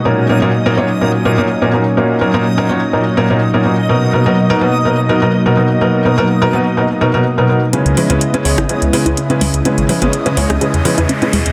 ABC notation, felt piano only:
X:1
M:4/4
L:1/16
Q:1/4=125
K:C#dor
V:1 name="Felt piano"
[A,,F,CDA]2 [A,,F,CDA] [A,,F,CDA] z [A,,F,CDA] [A,,F,CDc] z [A,,F,CDA] z [A,,F,CDA] [A,,F,CDA] z [A,,F,CDA] [A,,F,CDA] z | [A,,F,CDA]2 [A,,F,CDA] [A,,F,CDA] z [A,,F,CDA] [A,,F,CDc] z [A,,F,CDA] z [A,,F,CDA] [A,,F,CDA] z [A,,F,CDA] [A,,F,CDA] z | [B,,F,B,DA]2 [B,,F,B,DA] [B,,F,B,DA] z [B,,F,B,DA] [B,,F,B,DB] z [B,,F,B,DA] z [B,,F,B,DA] [B,,F,B,DA] z [B,,F,B,DA] [B,,F,B,DA] z | [B,,F,B,DA]2 [B,,F,B,DA] [B,,F,B,DA] z [B,,F,B,DA] [B,,F,B,DB] z [B,,F,B,DA] z [B,,F,B,DA] [B,,F,B,DA] z [B,,F,B,DA] [F,B,DA] z |
[C,G,CEB]2 [C,G,CEB] [C,G,CEB] z [C,G,CEB] [C,G,CEc] z [C,G,CEB] z [C,G,CEB] [C,G,CEB] z [C,G,CEB] [C,G,CEB] z | [C,G,CEB]2 [C,G,CEB] [C,G,CEB] z [C,G,CEB] [C,G,CEc] z [C,G,CEB] z [C,G,CEB] [C,G,CEB] z [C,G,CEB] [B,,G,CEB] z |]